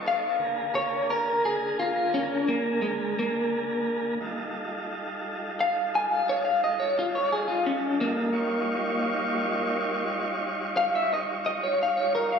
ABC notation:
X:1
M:12/8
L:1/16
Q:3/8=58
K:Fdor
V:1 name="Clean electric guitar"
f4 _d2 B2 A2 F2 _D2 B,2 A,2 B,6 | z8 f z a f _d f e d F d A F _D2 B,2- | B,8- B,2 z4 f =e _e z e _d f d B f |]
V:2 name="Tonewheel organ"
[_CE=A_d]2 [=D,B,_AB]16- [D,B,AB]6 | [G,EF=A]24 | [G,EF_d]24 |]